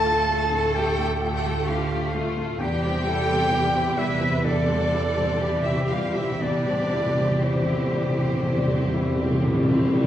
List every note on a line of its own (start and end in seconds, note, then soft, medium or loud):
0.00 0.71 D2 medium
0.00 2.55 D2 medium
0.00 0.20 A2 medium
0.00 0.29 A3 medium
0.00 0.06 F4 medium
0.00 0.75 A4 loud
0.00 1.68 A4 medium
0.00 0.75 A5 loud
0.00 0.77 A5 loud
0.06 0.28 A3 medium
0.06 0.43 F4 medium
0.29 0.65 A3 medium
0.29 0.52 A3 medium
0.52 0.89 A2 medium
0.52 0.76 A3 medium
0.74 1.13 A3 medium
0.74 0.98 A3 medium
0.74 1.66 G4 medium
0.74 1.68 G5 loud
0.74 1.40 G5 loud
0.98 1.35 A2 medium
0.98 1.22 A3 medium
1.21 1.45 A3 medium
1.21 1.58 F4 medium
1.45 1.81 A3 medium
1.45 1.68 A3 medium
1.67 2.05 A2 medium
1.67 1.91 A3 medium
1.67 2.14 F4 medium
1.67 2.14 G4 medium
1.67 2.10 F5 medium
1.67 2.13 F5 medium
1.92 2.13 A3 medium
1.92 2.28 F4 medium
2.13 2.51 A3 medium
2.13 2.37 A3 medium
2.13 2.59 F4 medium
2.37 2.60 A2 medium
2.37 2.61 A3 medium
2.58 6.37 E2 medium
2.58 4.41 E2 medium
2.58 2.66 C3 soft
2.58 2.82 G3 medium
2.58 3.05 G4 medium
2.58 3.94 G4 loud
2.58 3.94 G5 loud
2.58 4.00 G5 loud
2.67 2.73 C3 soft
2.74 2.81 C3 soft
2.83 2.89 C3 soft
2.83 3.20 G3 medium
2.83 3.06 C4 medium
2.90 2.95 C3 soft
2.96 3.02 C3 soft
3.04 3.10 C3 soft
3.04 3.29 G3 medium
3.04 3.43 E4 medium
3.04 3.50 A4 medium
3.11 3.17 C3 soft
3.18 3.25 C3 soft
3.28 3.66 G3 medium
3.28 3.52 C4 medium
3.33 3.39 C3 soft
3.40 3.46 C3 soft
3.51 3.89 E3 medium
3.51 3.76 G3 medium
3.51 3.98 G4 medium
3.55 3.61 C3 soft
3.62 3.68 C3 soft
3.69 3.75 C3 soft
3.74 3.84 C3 soft
3.74 3.98 C4 medium
3.74 4.12 E4 medium
3.85 3.91 C3 soft
3.92 3.98 C3 soft
3.97 4.06 C3 soft
3.97 4.21 G3 medium
3.97 4.35 G3 medium
3.97 4.45 E4 medium
3.97 4.45 B4 medium
3.97 4.46 E5 loud
3.97 4.45 E5 medium
4.07 4.14 C3 soft
4.15 4.21 C3 soft
4.21 4.29 C3 soft
4.21 4.59 E3 soft
4.21 4.45 C4 medium
4.30 4.37 C3 soft
4.38 4.44 C3 soft
4.44 6.37 E2 medium
4.44 4.52 C3 soft
4.44 4.67 G3 medium
4.44 5.65 D4 medium
4.44 5.40 A4 medium
4.44 5.68 D5 loud
4.44 5.63 D5 medium
4.53 4.59 C3 soft
4.60 4.67 C3 soft
4.68 4.74 C3 soft
4.68 5.07 G3 soft
4.68 4.92 C4 medium
4.76 4.82 C3 soft
4.83 4.90 C3 soft
4.91 4.98 C3 soft
4.91 5.17 G3 medium
4.91 5.31 E4 medium
4.99 5.06 C3 soft
5.07 5.13 C3 soft
5.15 5.21 C3 soft
5.15 5.55 G3 soft
5.15 5.41 C4 medium
5.22 5.29 C3 medium
5.30 5.37 C3 medium
5.39 5.45 C3 medium
5.39 5.81 E3 medium
5.39 5.65 G3 medium
5.39 6.39 G4 medium
5.46 5.52 C3 medium
5.54 5.59 C3 medium
5.60 5.67 C3 medium
5.60 5.89 E5 medium
5.65 5.74 C3 medium
5.65 5.91 C4 medium
5.65 5.90 E4 medium
5.65 6.06 E4 soft
5.65 5.92 E5 medium
5.76 5.82 C3 medium
5.84 5.90 C3 medium
5.88 5.98 C3 medium
5.88 6.31 G3 medium
5.88 6.17 G3 medium
5.88 6.15 F4 medium
5.88 6.15 F5 medium
5.88 6.16 F5 medium
6.00 6.06 C3 medium
6.07 6.15 C3 medium
6.15 6.23 C3 medium
6.15 6.57 E3 soft
6.15 6.42 C4 medium
6.15 6.41 E4 medium
6.15 6.41 E5 medium
6.15 6.44 E5 medium
6.24 6.31 C3 medium
6.32 6.39 C3 medium
6.40 10.07 E2 medium
6.40 8.39 E2 medium
6.40 6.47 C3 medium
6.40 6.65 G3 medium
6.40 7.42 D4 medium
6.40 9.89 G4 medium
6.40 7.46 D5 loud
6.40 7.43 D5 medium
6.48 6.55 C3 medium
6.57 6.63 C3 medium
6.65 6.72 C3 medium
6.65 7.08 G3 soft
6.65 6.93 C4 medium
6.73 6.80 C3 medium
6.81 6.88 C3 medium
6.89 6.96 C3 medium
6.89 7.18 G3 medium
6.89 7.33 E4 soft
6.97 7.05 C3 medium
7.06 7.12 C3 medium
7.13 7.20 C3 medium
7.18 7.28 C3 medium
7.18 7.58 G3 soft
7.18 7.43 C4 medium
7.29 7.36 C3 medium
7.38 7.44 C3 medium
7.42 7.52 C3 medium
7.42 7.83 E3 soft
7.42 7.69 G3 medium
7.42 9.94 C4 medium
7.42 9.95 C5 medium
7.53 7.60 C3 medium
7.62 7.68 C3 medium
7.67 7.76 C3 medium
7.67 7.94 C4 medium
7.67 8.07 E4 medium
7.77 7.85 C3 medium
7.86 7.92 C3 medium
7.92 8.00 C3 medium
7.92 8.33 G3 soft
7.92 8.18 G3 medium
8.01 8.08 C3 medium
8.09 8.16 C3 medium
8.17 8.24 C3 medium
8.17 8.58 E3 soft
8.17 8.44 C4 medium
8.25 8.32 C3 medium
8.33 8.40 C3 medium
8.42 10.07 E2 soft
8.42 8.47 C3 medium
8.42 8.67 G3 medium
8.49 8.55 C3 medium
8.57 8.64 C3 loud
8.65 8.73 C3 medium
8.65 9.08 G3 soft
8.69 8.94 C4 medium
8.74 8.81 C3 medium
8.83 8.89 C3 medium
8.91 8.98 C3 medium
8.91 9.19 G3 medium
8.91 9.33 E4 medium
8.99 9.06 C3 medium
9.07 9.14 C3 medium
9.15 9.23 C3 medium
9.15 9.58 G3 soft
9.20 9.30 C3 loud
9.20 9.44 C4 medium
9.31 9.38 C3 loud
9.39 9.46 C3 loud
9.44 9.53 C3 loud
9.44 9.84 E3 medium
9.44 9.69 G3 medium
9.55 9.62 C3 loud
9.63 9.70 C3 loud
9.69 9.78 C3 loud
9.69 9.95 C4 medium
9.69 10.07 E4 soft
9.79 9.87 C3 loud
9.88 9.94 C3 loud
9.94 10.03 C3 loud
9.94 10.07 G3 medium